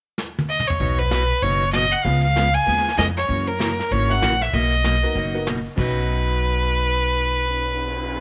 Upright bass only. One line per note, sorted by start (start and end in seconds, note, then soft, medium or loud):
0.80 1.30 B1 medium
1.42 1.92 F#1 medium
2.05 2.55 C#2 medium
2.67 2.93 D#2 medium
2.98 3.24 F2 medium
3.29 3.79 F#2 medium
3.91 4.18 G#1 medium
4.22 4.49 A#1 medium
4.53 5.03 B1 medium
5.15 5.65 F#1 medium
5.78 8.20 B1 medium